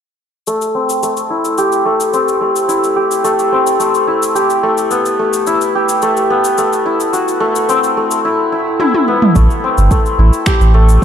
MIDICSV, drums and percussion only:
0, 0, Header, 1, 2, 480
1, 0, Start_track
1, 0, Tempo, 555556
1, 405, Time_signature, 4, 2, 24, 8
1, 9543, End_track
2, 0, Start_track
2, 0, Title_t, "Drums"
2, 407, Note_on_c, 9, 69, 50
2, 494, Note_off_c, 9, 69, 0
2, 532, Note_on_c, 9, 69, 29
2, 618, Note_off_c, 9, 69, 0
2, 773, Note_on_c, 9, 69, 55
2, 860, Note_off_c, 9, 69, 0
2, 890, Note_on_c, 9, 69, 48
2, 976, Note_off_c, 9, 69, 0
2, 1010, Note_on_c, 9, 69, 27
2, 1097, Note_off_c, 9, 69, 0
2, 1251, Note_on_c, 9, 69, 57
2, 1337, Note_off_c, 9, 69, 0
2, 1364, Note_on_c, 9, 69, 46
2, 1450, Note_off_c, 9, 69, 0
2, 1489, Note_on_c, 9, 69, 28
2, 1575, Note_off_c, 9, 69, 0
2, 1731, Note_on_c, 9, 69, 53
2, 1817, Note_off_c, 9, 69, 0
2, 1845, Note_on_c, 9, 69, 47
2, 1931, Note_off_c, 9, 69, 0
2, 1973, Note_on_c, 9, 69, 28
2, 2059, Note_off_c, 9, 69, 0
2, 2211, Note_on_c, 9, 69, 58
2, 2298, Note_off_c, 9, 69, 0
2, 2326, Note_on_c, 9, 69, 53
2, 2412, Note_off_c, 9, 69, 0
2, 2452, Note_on_c, 9, 69, 29
2, 2538, Note_off_c, 9, 69, 0
2, 2689, Note_on_c, 9, 69, 59
2, 2776, Note_off_c, 9, 69, 0
2, 2805, Note_on_c, 9, 69, 55
2, 2892, Note_off_c, 9, 69, 0
2, 2930, Note_on_c, 9, 69, 29
2, 3017, Note_off_c, 9, 69, 0
2, 3168, Note_on_c, 9, 69, 62
2, 3255, Note_off_c, 9, 69, 0
2, 3285, Note_on_c, 9, 69, 50
2, 3371, Note_off_c, 9, 69, 0
2, 3409, Note_on_c, 9, 69, 29
2, 3496, Note_off_c, 9, 69, 0
2, 3651, Note_on_c, 9, 69, 57
2, 3737, Note_off_c, 9, 69, 0
2, 3765, Note_on_c, 9, 69, 50
2, 3851, Note_off_c, 9, 69, 0
2, 3889, Note_on_c, 9, 69, 32
2, 3975, Note_off_c, 9, 69, 0
2, 4127, Note_on_c, 9, 69, 62
2, 4213, Note_off_c, 9, 69, 0
2, 4242, Note_on_c, 9, 69, 55
2, 4328, Note_off_c, 9, 69, 0
2, 4368, Note_on_c, 9, 69, 32
2, 4455, Note_off_c, 9, 69, 0
2, 4607, Note_on_c, 9, 69, 61
2, 4694, Note_off_c, 9, 69, 0
2, 4723, Note_on_c, 9, 69, 54
2, 4810, Note_off_c, 9, 69, 0
2, 4850, Note_on_c, 9, 69, 30
2, 4936, Note_off_c, 9, 69, 0
2, 5088, Note_on_c, 9, 69, 62
2, 5174, Note_off_c, 9, 69, 0
2, 5201, Note_on_c, 9, 69, 52
2, 5288, Note_off_c, 9, 69, 0
2, 5329, Note_on_c, 9, 69, 31
2, 5416, Note_off_c, 9, 69, 0
2, 5568, Note_on_c, 9, 69, 59
2, 5654, Note_off_c, 9, 69, 0
2, 5684, Note_on_c, 9, 69, 51
2, 5770, Note_off_c, 9, 69, 0
2, 5813, Note_on_c, 9, 69, 32
2, 5899, Note_off_c, 9, 69, 0
2, 6050, Note_on_c, 9, 69, 68
2, 6137, Note_off_c, 9, 69, 0
2, 6165, Note_on_c, 9, 69, 53
2, 6251, Note_off_c, 9, 69, 0
2, 6292, Note_on_c, 9, 69, 29
2, 6378, Note_off_c, 9, 69, 0
2, 6528, Note_on_c, 9, 69, 64
2, 6615, Note_off_c, 9, 69, 0
2, 6646, Note_on_c, 9, 69, 53
2, 6732, Note_off_c, 9, 69, 0
2, 6770, Note_on_c, 9, 69, 31
2, 6857, Note_off_c, 9, 69, 0
2, 7008, Note_on_c, 9, 69, 63
2, 7094, Note_off_c, 9, 69, 0
2, 7601, Note_on_c, 9, 48, 57
2, 7687, Note_off_c, 9, 48, 0
2, 7729, Note_on_c, 9, 48, 58
2, 7815, Note_off_c, 9, 48, 0
2, 7969, Note_on_c, 9, 45, 76
2, 8055, Note_off_c, 9, 45, 0
2, 8082, Note_on_c, 9, 36, 107
2, 8084, Note_on_c, 9, 69, 52
2, 8169, Note_off_c, 9, 36, 0
2, 8170, Note_off_c, 9, 69, 0
2, 8212, Note_on_c, 9, 69, 29
2, 8299, Note_off_c, 9, 69, 0
2, 8448, Note_on_c, 9, 69, 59
2, 8535, Note_off_c, 9, 69, 0
2, 8562, Note_on_c, 9, 36, 89
2, 8563, Note_on_c, 9, 69, 53
2, 8648, Note_off_c, 9, 36, 0
2, 8649, Note_off_c, 9, 69, 0
2, 8690, Note_on_c, 9, 69, 30
2, 8777, Note_off_c, 9, 69, 0
2, 8927, Note_on_c, 9, 69, 66
2, 9014, Note_off_c, 9, 69, 0
2, 9039, Note_on_c, 9, 26, 75
2, 9040, Note_on_c, 9, 69, 49
2, 9042, Note_on_c, 9, 36, 103
2, 9125, Note_off_c, 9, 26, 0
2, 9127, Note_off_c, 9, 69, 0
2, 9129, Note_off_c, 9, 36, 0
2, 9169, Note_on_c, 9, 69, 29
2, 9255, Note_off_c, 9, 69, 0
2, 9408, Note_on_c, 9, 69, 61
2, 9494, Note_off_c, 9, 69, 0
2, 9543, End_track
0, 0, End_of_file